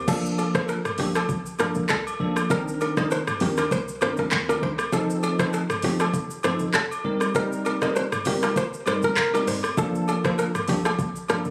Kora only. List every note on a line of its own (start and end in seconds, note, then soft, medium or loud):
0.09 0.21 A4 medium
0.39 0.51 A4 medium
0.55 0.65 C5 medium
0.69 0.81 A#4 medium
1.00 1.12 G4 medium
1.16 1.26 A4 medium
1.60 1.72 A#4 medium
1.90 2.13 A4 medium
2.51 2.63 A#4 medium
2.82 2.94 A#4 medium
2.98 3.08 D#5 medium
3.12 3.24 C5 medium
3.42 3.54 G4 medium
3.59 3.69 A#4 medium
3.72 3.84 C5 medium
4.02 4.15 C5 medium
4.19 4.29 A#4 medium
4.49 4.59 A#4 medium
4.63 4.75 C5 medium
4.93 5.06 A4 medium
5.24 5.36 A4 medium
5.40 5.50 C5 medium
5.54 5.66 A4 medium
5.84 5.97 G4 medium
6.01 6.11 A4 medium
6.45 6.57 C5 medium
6.75 6.98 A4 loud
7.36 7.48 A#4 medium
7.66 7.78 A#4 medium
7.83 7.93 D#5 medium
7.96 8.09 C5 medium
8.27 8.39 G4 medium
8.44 8.54 A#4 medium
8.57 8.69 C5 medium
8.88 9.04 C5 medium
9.04 9.34 A#4 medium
9.35 9.44 A#4 medium
9.48 9.60 C5 medium
9.78 9.91 A4 medium
10.09 10.21 A4 medium
10.25 10.35 C5 medium
10.39 10.51 A#4 medium
10.69 10.81 G4 medium
10.86 10.96 A4 medium
11.30 11.42 A#4 medium